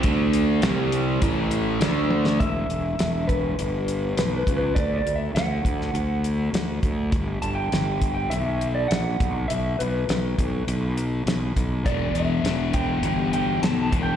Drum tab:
HH |x-x-x-x-x-x-x---|x-x-x-x-x-x-x-x-|x-x-x-x-x-x-x-x-|x-x-x-x-x-x-x-x-|
SD |----o-------o--o|----o-------o---|----o--o----o---|----o-------o---|
T1 |--------------o-|----------------|----------------|----------------|
BD |o-------o-------|o-----o-------o-|o-----o-------o-|o-----o-------o-|

HH |x-x-x-x-x-x-x-x-|x-x-x-x-x-x-x-x-|
SD |----o-------o---|----o-------o---|
T1 |----------------|----------------|
BD |------o-------o-|o-----o-------o-|